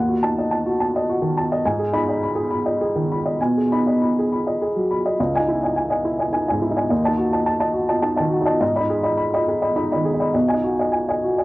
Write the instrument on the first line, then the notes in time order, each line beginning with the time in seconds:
upright piano
Already playing: D#2 F#5
0.09 F#4
0.23 D#4 A5
0.38 D#5
0.51 A5
0.66 F#4
0.80 A5
0.96 D#5
1.09 F#4
1.22 D#3
1.37 A5
1.52 D#5
1.66 G#2 G#5
1.79 G#4
1.93 D#4 B5
2.09 D#5
2.23 B5
2.35 G#4
2.51 B5
2.66 D#5
2.81 G#4
2.96 D#3
3.11 B5
3.25 D#5
3.40 B2 G#5
3.57 G#4
3.72 D#4 B5
3.87 D#5
4.02 B5
4.18 G#4
4.32 B5
4.47 D#5
4.61 G#4
4.76 F#3
4.91 B5
5.06 D#5
5.20 C#2 D#5
5.35 D#5 G#5
5.40 D#4
5.48 E4
5.63 D#5 G#5
5.76 G#5
5.90 D#5 G#5
6.05 E4
6.19 D#5 G#5
6.32 D#4 G#5
6.48 G#2 D#5 G#5
6.62 E4
6.71 D#4
6.77 D#5 G#5
6.90 D#2 D#5
7.04 D#4 D#5 A5
7.17 F#4
7.33 D#5 A5
7.46 A5
7.60 D#5 A5
7.74 F#4
7.89 D#5 A5
8.02 D#4 A5
8.16 D#3 D#5 A5
8.31 F#4
8.41 D#4
8.45 D#5 A5
8.61 G#2 D#5
8.76 D#5 B5
8.80 D#4
8.90 G#4
9.03 D#5 B5
9.17 B5
9.34 D#5 B5
9.48 G#4
9.62 D#5 B5
9.76 D#4 B5
9.92 D#5 B5
9.96 D#3
10.05 G#4
10.14 D#4
10.20 D#5 B5
10.34 B1 D#5
10.48 D#5 G#5
10.54 D#4
10.64 F#4
10.79 D#5 G#5
10.92 G#5
11.09 D#5 G#5
11.24 F#4
11.38 D#5 G#5